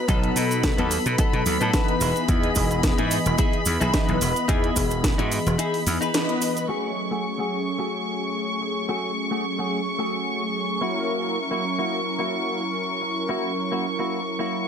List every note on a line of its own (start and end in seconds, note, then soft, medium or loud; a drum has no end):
0.00 6.70 B5 medium
0.08 0.29 B1 medium
0.08 1.43 F#3 medium
0.08 0.43 B3 loud
0.08 1.43 B3 medium
0.08 0.44 D#4 medium
0.08 0.44 A4 loud
0.08 1.44 A4 loud
0.08 kick loud
0.08 closed hi-hat medium
0.08 cabasa soft
0.23 closed hi-hat soft
0.36 0.72 B2 medium
0.36 open hi-hat loud
0.36 cabasa medium
0.51 closed hi-hat soft
0.51 cabasa medium
0.63 kick loud
0.63 snare loud
0.63 closed hi-hat medium
0.63 cabasa soft
0.78 0.97 D#2 medium
0.78 0.98 B3 medium
0.78 0.99 D#4 medium
0.78 0.99 A4 medium
0.78 closed hi-hat medium
0.91 open hi-hat loud
0.91 cabasa medium
1.06 1.15 B2 medium
1.06 closed hi-hat soft
1.06 cabasa soft
1.18 1.40 B3 medium
1.18 1.40 D#4 medium
1.18 1.40 A4 medium
1.18 kick loud
1.18 closed hi-hat medium
1.18 cabasa soft
1.33 1.42 B2 medium
1.33 closed hi-hat soft
1.46 1.57 D#2 medium
1.46 1.71 F#3 medium
1.46 1.71 B3 medium
1.46 1.71 D#4 medium
1.46 1.71 A4 medium
1.46 open hi-hat loud
1.46 cabasa medium
1.61 1.70 A2 medium
1.61 1.95 B3 medium
1.61 1.95 D#4 medium
1.61 1.95 A4 medium
1.61 closed hi-hat soft
1.61 cabasa soft
1.73 2.26 E3 loud
1.73 2.26 B3 medium
1.73 2.26 D#4 medium
1.73 2.26 B4 loud
1.73 kick loud
1.73 snare loud
1.73 closed hi-hat medium
1.73 cabasa soft
1.88 closed hi-hat soft
2.01 2.12 E1 medium
2.01 2.79 D#4 medium
2.01 2.79 E4 medium
2.01 2.79 G#4 medium
2.01 open hi-hat loud
2.01 cabasa medium
2.16 closed hi-hat soft
2.16 cabasa soft
2.28 2.49 E2 medium
2.28 3.63 E3 loud
2.28 3.63 B3 medium
2.28 3.64 G#4 loud
2.28 3.64 D#5 medium
2.28 kick loud
2.28 closed hi-hat medium
2.28 cabasa soft
2.43 closed hi-hat soft
2.55 2.92 E1 medium
2.55 kick medium
2.55 open hi-hat loud
2.55 cabasa medium
2.71 closed hi-hat soft
2.71 cabasa soft
2.83 kick loud
2.83 snare loud
2.83 closed hi-hat medium
2.83 cabasa soft
2.98 3.17 G#2 medium
2.98 3.18 D#4 medium
2.98 3.19 E4 medium
2.98 3.19 G#4 medium
2.98 closed hi-hat medium
3.11 open hi-hat loud
3.11 cabasa medium
3.26 3.35 E1 medium
3.26 closed hi-hat medium
3.26 cabasa medium
3.38 3.60 D#4 medium
3.38 3.60 E4 medium
3.38 3.60 G#4 medium
3.38 kick loud
3.38 closed hi-hat medium
3.38 cabasa soft
3.53 closed hi-hat soft
3.66 3.77 E2 medium
3.66 3.91 E3 medium
3.66 3.91 B3 medium
3.66 3.91 D#4 medium
3.66 3.91 G#4 medium
3.66 open hi-hat medium
3.66 cabasa medium
3.81 3.90 B1 medium
3.81 4.15 D#4 medium
3.81 4.15 E4 medium
3.81 4.15 G#4 medium
3.81 closed hi-hat soft
3.81 cabasa soft
3.93 4.46 E3 loud
3.93 4.46 B3 medium
3.93 4.46 B4 loud
3.93 4.46 D#5 medium
3.93 kick loud
3.93 snare loud
3.93 closed hi-hat medium
3.93 cabasa soft
4.09 4.18 B1 loud
4.09 closed hi-hat soft
4.21 4.32 E1 medium
4.21 open hi-hat loud
4.21 cabasa medium
4.36 closed hi-hat soft
4.36 cabasa soft
4.48 4.69 E2 medium
4.48 5.83 E3 loud
4.48 5.83 B3 medium
4.48 4.84 D#4 loud
4.48 4.84 E4 loud
4.48 4.84 G#4 loud
4.48 5.84 G#4 loud
4.48 5.84 D#5 medium
4.48 kick loud
4.48 closed hi-hat medium
4.48 cabasa soft
4.64 closed hi-hat soft
4.76 5.12 E1 medium
4.76 kick medium
4.76 open hi-hat loud
4.76 cabasa medium
4.91 closed hi-hat soft
4.91 cabasa soft
5.04 kick loud
5.04 snare loud
5.04 closed hi-hat medium
5.04 cabasa soft
5.18 5.38 G#2 medium
5.18 5.39 D#4 medium
5.18 5.39 E4 medium
5.18 5.39 F#4 loud
5.18 closed hi-hat medium
5.32 open hi-hat loud
5.32 cabasa medium
5.46 5.55 E1 medium
5.46 closed hi-hat medium
5.46 cabasa medium
5.58 5.80 D#4 medium
5.58 5.80 E4 medium
5.58 5.81 G#4 medium
5.58 closed hi-hat medium
5.58 cabasa soft
5.74 open hi-hat medium
5.86 5.97 E2 medium
5.86 6.11 E3 medium
5.86 6.11 B3 medium
5.86 6.11 D#4 medium
5.86 6.11 G#4 medium
5.86 open hi-hat loud
5.86 cabasa medium
6.01 6.35 D#4 medium
6.01 6.35 E4 medium
6.01 6.36 B4 loud
6.01 closed hi-hat soft
6.01 cabasa soft
6.14 6.66 E3 medium
6.14 6.66 B3 medium
6.14 6.66 B4 loud
6.14 6.66 D#5 medium
6.14 snare loud
6.14 closed hi-hat medium
6.14 cabasa soft
6.29 closed hi-hat soft
6.42 open hi-hat loud
6.42 cabasa medium
6.57 closed hi-hat soft
6.57 cabasa medium
6.68 6.90 A3 medium
6.68 10.79 A3 medium
6.68 10.79 C#4 medium
6.68 6.90 F#4 medium
6.68 6.91 G#4 loud
6.68 10.80 G#4 medium
6.68 14.68 C#6 medium
7.11 7.24 A3 medium
7.11 7.24 F#4 medium
7.11 7.25 G#4 medium
7.39 7.59 A3 medium
7.39 7.59 F#4 medium
7.39 7.60 G#4 medium
7.78 8.21 A3 medium
7.78 8.22 F#4 medium
7.78 8.22 G#4 medium
8.61 muted clean electric guitar stroke soft
8.89 9.10 A3 loud
8.89 9.11 F#4 medium
8.89 9.11 G#4 loud
9.31 9.44 A3 medium
9.31 9.44 F#4 medium
9.31 9.45 G#4 medium
9.59 9.79 A3 medium
9.59 9.79 F#4 medium
9.59 9.80 G#4 medium
9.99 10.41 A3 medium
9.99 10.42 F#4 medium
9.99 10.42 G#4 medium
10.81 14.68 F#3 medium
10.81 11.37 A#3 medium
10.81 14.68 C#4 medium
10.81 11.37 E4 medium
10.81 14.68 E4 medium
10.81 11.37 F#4 medium
10.81 14.68 A#4 medium
11.51 11.64 A#3 medium
11.51 11.64 E4 medium
11.51 11.65 F#4 medium
11.79 11.99 A#3 medium
11.79 11.99 E4 medium
11.79 12.00 F#4 medium
12.19 12.62 A#3 medium
12.19 12.62 E4 medium
12.19 12.62 F#4 medium
13.01 muted clean electric guitar stroke soft
13.29 13.51 A#3 loud
13.29 13.51 E4 medium
13.29 13.51 F#4 loud
13.72 13.84 A#3 medium
13.72 13.85 E4 medium
13.72 13.85 F#4 medium
13.99 14.19 A#3 medium
13.99 14.20 E4 medium
13.99 14.20 F#4 medium
14.39 14.68 A#3 medium
14.39 14.68 E4 medium
14.39 14.68 F#4 medium